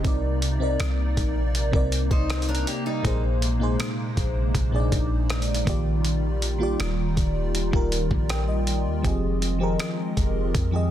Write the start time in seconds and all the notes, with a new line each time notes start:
Already playing: C3 D#4, downlifter
0.03 C2 C3 A#3 C4 D#4 A#4 D5, kick, closed hi-hat
0.07 D5
0.42 closed hi-hat
0.59 C3 C4 D#4 A#4
0.63 D5
0.80 C2, cross-stick, closed hi-hat
1.17 A#1, kick, closed hi-hat
1.55 closed hi-hat
1.71 C2 C3 C4 D#4 A#4, kick
1.76 D5
1.92 closed hi-hat
2.11 C2 D#4 C5, kick
2.30 cross-stick, closed hi-hat
2.42 closed hi-hat
2.49 D4 A#4
2.55 closed hi-hat
2.67 A#3 G4, closed hi-hat
2.86 G3 D#4
3.02 A#1 A#2 C3 G#3 A#3 D#4 G#4, kick, closed hi-hat
3.07 C5
3.42 closed hi-hat
3.59 A#2 A#3 D#4 G#4
3.63 C5
3.80 cross-stick, closed hi-hat
4.17 A#1, kick, closed hi-hat
4.55 A#1, kick, closed hi-hat
4.71 A#2 A#3 D4 G#4
4.76 D5
4.80 D#4
4.92 A#1, kick, closed hi-hat
5.30 cross-stick, closed hi-hat
5.42 closed hi-hat
5.54 closed hi-hat
5.65 A#1 D#3 G3 A#3 D#4 F4 G4, kick, closed hi-hat
5.69 D5
6.05 closed hi-hat
6.42 closed hi-hat
6.58 D#3 A#3 F4 G4
6.63 D5
6.80 D#1, cross-stick, closed hi-hat
7.17 D#1, kick, closed hi-hat
7.55 closed hi-hat
7.71 D#1 D#3 A#3 F4 G4, kick
7.76 A#4
7.92 closed hi-hat
8.11 A#1, kick
8.29 G5, cross-stick, closed hi-hat
8.48 D#5
8.67 closed hi-hat
8.86 D#2
9.02 F1 D#3 F3 G#3 C4 G4 G#4, kick, closed hi-hat
9.07 D#5
9.42 closed hi-hat
9.59 F3 C4 G4 G#4
9.63 A#4
9.79 cross-stick, closed hi-hat
10.17 F1, kick, closed hi-hat
10.55 F2, kick, closed hi-hat
10.71 F3 C4 G4 G#4
10.76 D#5